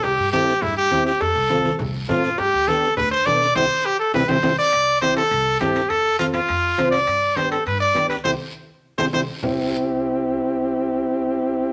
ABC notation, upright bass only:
X:1
M:4/4
L:1/8
Q:1/4=204
K:C
V:1 name="Upright bass" clef=bass
C,, G,,3 G,,2 E,,2 | F,, C,,3 C,,2 A,,2 | G,, D,,3 D,,2 B,,2 | C,, z3 C,, C,, C,, z |
C,,4 C,,2 G,,2 | F,,4 F,,2 C,,2 | G,,4 G,,2 D,,2 | C,, z4 C,, C,, z |
C,,8- | C,,8 |]